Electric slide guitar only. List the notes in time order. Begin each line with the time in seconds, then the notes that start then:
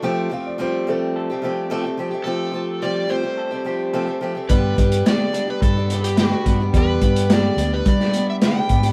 2.24 A4
2.82 D5
3.10 C5
4.49 B4
5.06 D5
5.50 B4
5.63 A4
6.04 G4
6.20 F#4
6.77 B4
7.33 D5
7.74 B4
7.88 D5
8.30 E5
8.44 G5